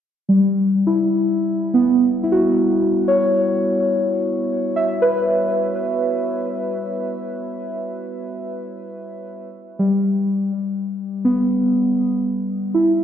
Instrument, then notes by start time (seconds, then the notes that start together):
synth keys
0.29 G3
0.87 E4
1.74 B3
2.23 E4
2.32 F#4
3.08 C#5
4.76 E5
5.02 B4
9.79 G3
11.25 B3
12.74 E4